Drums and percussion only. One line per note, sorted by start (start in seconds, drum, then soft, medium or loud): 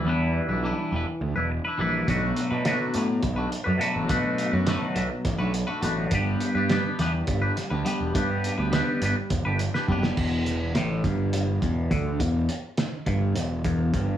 2.08 kick loud
2.08 closed hi-hat medium
2.36 closed hi-hat medium
2.65 snare loud
2.65 closed hi-hat medium
2.94 closed hi-hat medium
3.23 kick loud
3.23 closed hi-hat medium
3.52 closed hi-hat medium
3.81 closed hi-hat medium
4.09 kick loud
4.09 closed hi-hat medium
4.38 closed hi-hat medium
4.67 snare loud
4.67 closed hi-hat medium
4.96 closed hi-hat medium
5.25 kick loud
5.25 snare soft
5.25 closed hi-hat medium
5.54 closed hi-hat medium
5.83 closed hi-hat medium
6.11 kick loud
6.11 closed hi-hat medium
6.41 closed hi-hat medium
6.70 snare loud
6.70 closed hi-hat medium
6.99 snare soft
6.99 closed hi-hat medium
7.27 kick loud
7.27 closed hi-hat medium
7.57 snare soft
7.57 closed hi-hat medium
7.86 closed hi-hat medium
8.15 kick loud
8.15 closed hi-hat loud
8.44 closed hi-hat medium
8.73 snare loud
8.73 closed hi-hat medium
9.02 closed hi-hat medium
9.30 kick loud
9.30 closed hi-hat medium
9.59 closed hi-hat medium
9.75 snare medium
9.88 kick medium
10.03 snare medium
10.17 kick medium
10.17 crash loud
10.46 snare soft
10.46 closed hi-hat medium
10.75 snare loud
10.75 closed hi-hat medium
11.04 kick loud
11.04 closed hi-hat medium
11.33 snare soft
11.33 closed hi-hat loud
11.62 kick medium
11.62 closed hi-hat medium
11.91 kick loud
11.91 closed hi-hat medium
12.20 kick loud
12.20 closed hi-hat medium
12.49 closed hi-hat medium
12.77 snare loud
12.77 closed hi-hat medium
13.06 kick medium
13.06 closed hi-hat medium
13.36 snare soft
13.36 closed hi-hat loud
13.64 kick medium
13.64 closed hi-hat medium
13.94 kick loud
13.94 closed hi-hat medium